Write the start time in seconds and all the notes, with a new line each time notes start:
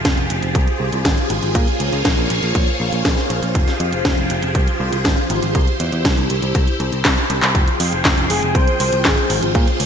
Already playing: F3 F4 G4 G#4 C5
0.05 F1, kick, snare, closed hi-hat
0.18 F1, closed hi-hat
0.30 F1, closed hi-hat
0.43 F1, closed hi-hat
0.55 C2, kick, closed hi-hat
0.68 closed hi-hat
0.80 C2
0.93 C2, closed hi-hat
1.05 G#1, kick, snare, closed hi-hat
1.18 closed hi-hat
1.30 G#1, closed hi-hat
1.43 G#1, closed hi-hat
1.55 A#2 A#3 C5 C#5, kick, closed hi-hat
1.68 closed hi-hat
1.80 C#2, closed hi-hat
1.93 C#2, closed hi-hat
2.05 A#1, kick, snare, closed hi-hat
2.17 A#1, closed hi-hat
2.30 A#1, closed hi-hat
2.43 A#1, closed hi-hat
2.55 A#1, kick, closed hi-hat
2.68 closed hi-hat
2.80 A#1
2.92 A#1, closed hi-hat
3.05 A#1, kick, snare, closed hi-hat
3.18 snare, closed hi-hat
3.30 A#1, closed hi-hat
3.42 A#1, closed hi-hat
3.55 F1 F3 G4 G#4, kick, closed hi-hat
3.68 snare, closed hi-hat
3.80 F2, closed hi-hat
3.92 F1, closed hi-hat
4.05 F1, kick, snare, closed hi-hat
4.17 F1, closed hi-hat
4.30 F1, closed hi-hat
4.42 F1, closed hi-hat
4.55 C2, kick, closed hi-hat
4.68 closed hi-hat
4.80 C2
4.92 C2, closed hi-hat
5.05 G#1, kick, snare, closed hi-hat
5.17 closed hi-hat
5.30 G#1, closed hi-hat
5.42 G#1, closed hi-hat
5.55 C2 E4 G4, kick, closed hi-hat
5.67 closed hi-hat
5.80 E2, closed hi-hat
5.92 E2, closed hi-hat
6.05 C2, kick, snare, closed hi-hat
6.17 C2, closed hi-hat
6.30 C2, closed hi-hat
6.42 C2, closed hi-hat
6.55 C2, kick, closed hi-hat
6.67 closed hi-hat
6.80 C2, closed hi-hat
6.92 C2, closed hi-hat
7.05 C2, kick, snare, clap, closed hi-hat
7.17 closed hi-hat
7.30 C2, closed hi-hat
7.42 C2, clap, closed hi-hat
7.55 F1 F3 F4 G#4 C5 G5, kick, closed hi-hat
7.68 closed hi-hat
7.80 F2, open hi-hat
7.92 F1, closed hi-hat
8.05 F1, kick, snare, clap, closed hi-hat
8.18 F1, closed hi-hat
8.30 F1 G#4, open hi-hat
8.42 F1, closed hi-hat
8.55 C2 C5, kick, closed hi-hat
8.68 closed hi-hat
8.80 C2 C5, open hi-hat
8.92 C2, closed hi-hat
9.05 G#1 G#4, kick, snare, clap, closed hi-hat
9.18 closed hi-hat
9.30 G#1, open hi-hat
9.42 G#1, closed hi-hat
9.55 A#2 A#3 G#4 C#5, kick, closed hi-hat
9.67 closed hi-hat
9.80 C#2, open hi-hat